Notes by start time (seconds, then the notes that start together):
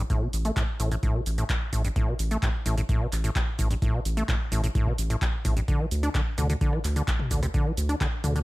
0.10 A2, kick, closed hi-hat, cabasa
0.22 B2
0.33 A1, open hi-hat, cabasa
0.45 A3, closed hi-hat, cabasa
0.56 A2, kick, clap, closed hi-hat, cabasa
0.80 A1 A2, open hi-hat, cabasa
0.92 A2, closed hi-hat, cabasa
1.03 A2, kick, closed hi-hat, cabasa
1.15 B2
1.26 A1, open hi-hat, cabasa
1.38 A2, closed hi-hat, cabasa
1.49 kick, clap, closed hi-hat, cabasa
1.73 A1 A2, kick, open hi-hat, cabasa
1.85 G2, closed hi-hat, cabasa
1.96 A2, kick, closed hi-hat, cabasa
2.08 B2
2.19 A1, open hi-hat, cabasa
2.31 A3, closed hi-hat, cabasa
2.42 A2, kick, clap, closed hi-hat, cabasa
2.66 A1 A2, open hi-hat, cabasa
2.78 A2, closed hi-hat, cabasa
2.89 A2, kick, closed hi-hat, cabasa
3.01 B2
3.12 A1, clap, open hi-hat, cabasa
3.24 A2, closed hi-hat, cabasa
3.36 kick, clap, closed hi-hat, cabasa
3.59 A1 A2, kick, open hi-hat, cabasa
3.71 G2, closed hi-hat, cabasa
3.82 A2, kick, closed hi-hat, cabasa
3.94 B2
4.05 A1, open hi-hat, cabasa
4.17 A3, closed hi-hat, cabasa
4.29 A2, kick, clap, closed hi-hat, cabasa
4.52 A1 A2, open hi-hat, cabasa
4.64 A2, closed hi-hat, cabasa
4.75 A2, kick, closed hi-hat, cabasa
4.87 B2, kick
4.98 A1, open hi-hat, cabasa
5.10 A2, closed hi-hat, cabasa
5.22 kick, clap, closed hi-hat, cabasa
5.45 A1 A2, kick, open hi-hat, cabasa
5.57 G2, closed hi-hat, cabasa
5.68 D3, kick, closed hi-hat, cabasa
5.80 E3
5.91 D2, open hi-hat, cabasa
6.03 D4, closed hi-hat, cabasa
6.15 D3, kick, cross-stick, clap, closed hi-hat, cabasa
6.38 D2 D3, open hi-hat, mid tom, cabasa
6.50 D3, closed hi-hat, cabasa
6.61 D3, kick, closed hi-hat, cabasa
6.73 E3, cross-stick
6.84 D2, clap, open hi-hat, cabasa
6.96 D3, closed hi-hat, cabasa
7.08 kick, clap, closed hi-hat, cabasa
7.19 mid tom
7.31 D2 D3, kick, open hi-hat, cabasa
7.43 C3, cross-stick, closed hi-hat, cabasa
7.54 D3, kick, closed hi-hat, cabasa
7.66 E3
7.77 D2, open hi-hat, cabasa
7.89 D4, closed hi-hat, cabasa
8.01 D3, kick, cross-stick, clap, closed hi-hat, cabasa
8.24 D2 D3, open hi-hat, mid tom, cabasa
8.36 D3, closed hi-hat, cabasa